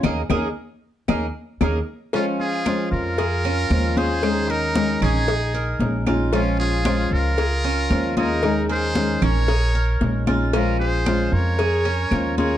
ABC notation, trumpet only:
X:1
M:4/4
L:1/8
Q:1/4=114
K:Bbdor
V:1 name="Trumpet"
z8 | D F2 F4 A- | A E2 E4 z | D F2 F4 E- |
E A2 B4 z | F A2 B4 B |]